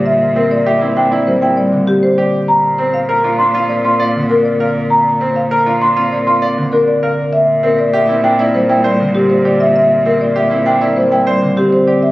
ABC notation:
X:1
M:4/4
L:1/16
Q:1/4=99
K:Cmix
V:1 name="Marimba"
e z B d e z g d c g d z G c d z | b z c f b z c' f d c' f z B d f z | b z c f b z c' f d c' f z B d f z | e z B d e z g d c g d z G c d e |
e z B d e z g d c g d z G c d e |]
V:2 name="Grand piano"
z2 C z G E D E z E z4 G z | z2 C z B F D F z F d z3 B z | z2 C z B F D F z F d z3 B z | z2 C z G E D E z E c z3 G z |
z2 C z G E D E z E c z3 G z |]
V:3 name="Harp"
[D,G,B,C]4- [D,G,B,C] C2 B, G,3 D,4- D, | z4 z D2 C B,3 D, D4- | D4- D D2 C B,3 D, D4 | z4 z C2 B, G,3 D, C4- |
C4- C C2 B, G,3 D, C4 |]
V:4 name="Cello" clef=bass
B,,16 | B,,16- | B,,16 | B,,16- |
B,,16 |]